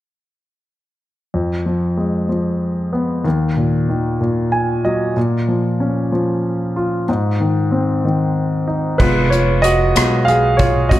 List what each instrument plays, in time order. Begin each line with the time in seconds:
1.34 grand piano F2
1.66 grand piano F3
1.97 grand piano G#3
2.29 grand piano F3
2.93 grand piano B3
3.25 grand piano D#2
3.57 grand piano A#2
3.89 grand piano D#3
4.21 grand piano A#2
4.52 grand piano G#5
4.85 grand piano F#3 D#5
5.17 grand piano A#2
5.48 grand piano F3
5.80 grand piano C#4
6.12 grand piano F3
6.76 grand piano F4
7.09 grand piano G#2
7.40 grand piano D#3
7.71 grand piano C4
8.05 grand piano D#3
8.67 grand piano D#4
8.98 upright bass F1, grand piano G#3 B3 F4 B4, kick, crash
9.30 grand piano F4 C#5, closed hi-hat
9.62 grand piano F#4 D#5, closed hi-hat
9.95 upright bass B1, grand piano G#3 B3 F4, cross-stick, closed hi-hat
10.25 grand piano G#4 F5, closed hi-hat
10.57 grand piano F4 C#5, kick, closed hi-hat
10.89 upright bass D#2, grand piano F#3 C#4 F4 F#4 D#5, kick, closed hi-hat